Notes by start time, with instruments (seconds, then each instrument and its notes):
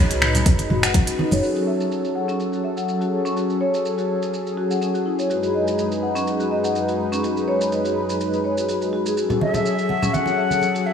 Already playing: fm bass F#1, analog synth pad G#3 D#4 G#4 B4
0.11 fm bass C#2, marimba F#4, closed hi-hat, shaker
0.22 finger snap, mid tom, high conga
0.35 closed hi-hat, low conga, shaker
0.46 fm bass F#1, kick, closed hi-hat, high conga, shaker
0.59 closed hi-hat, muted conga, shaker
0.70 fm bass F#1, marimba F#4, mid tom, high conga
0.83 marimba F#5, finger snap, closed hi-hat, shaker
0.94 fm bass C#2, marimba C#4, kick, closed hi-hat, muted conga, shaker
1.07 marimba F#4, closed hi-hat, shaker
1.19 marimba D#4, high conga
1.31 fm bass F#1, marimba C#5, muted conga, shaker
1.43 analog synth pad F#3 C#4 G#4 A4, marimba F#4, shaker
1.56 marimba F#4, shaker
1.67 marimba E5
1.80 shaker
1.92 shaker
2.04 shaker
2.15 marimba F#5
2.28 marimba C#4, shaker
2.40 shaker
2.53 marimba F#4, shaker
2.64 marimba E5
2.77 marimba F#5, shaker
2.88 shaker
3.01 marimba F#4, shaker
3.25 marimba C#4, shaker
3.37 marimba F#4, shaker
3.50 shaker
3.61 marimba C#5
3.74 shaker
3.85 shaker
3.98 marimba F#4, shaker
4.22 shaker
4.34 shaker
4.47 shaker
4.57 marimba F#4
4.70 marimba F#5, shaker
4.82 marimba C#4, shaker
4.95 marimba F#4, shaker
5.06 marimba E4
5.19 marimba C#5, shaker
5.30 analog synth pad F#2 G#3 D#4 B4, marimba F#4, shaker
5.43 marimba F#4, shaker
5.54 marimba D#5
5.67 shaker
5.79 shaker
5.92 shaker
6.03 marimba F#5
6.15 marimba C#4, shaker
6.27 shaker
6.40 marimba F#4, shaker
6.51 marimba D#5
6.64 marimba F#5, shaker
6.75 shaker
6.88 marimba F#4, shaker
7.12 marimba C#4, shaker
7.24 marimba F#4, shaker
7.37 shaker
7.48 marimba C#5
7.61 shaker
7.72 shaker
7.85 marimba F#4, shaker
8.09 shaker
8.20 shaker
8.33 shaker
8.44 marimba C#5
8.57 marimba F#4, shaker
8.69 marimba F#4, shaker
8.82 marimba F#4, shaker
8.93 marimba F#4
9.06 marimba G#4, shaker
9.17 analog synth pad F#3 C#4 G#4 A4, marimba F#4, shaker
9.30 marimba F#4, low conga, shaker
9.41 flute E5, marimba E5, high conga
9.54 muted conga, low conga, shaker
9.66 shaker
9.79 shaker
9.89 marimba F#5, muted conga, high conga
10.03 marimba C#4, low conga, shaker
10.14 flute F#5, high conga, shaker
10.26 marimba F#4, muted conga, shaker
10.38 marimba E5
10.51 marimba F#5, high conga, shaker
10.62 muted conga, shaker
10.75 marimba F#4, shaker
10.86 flute E5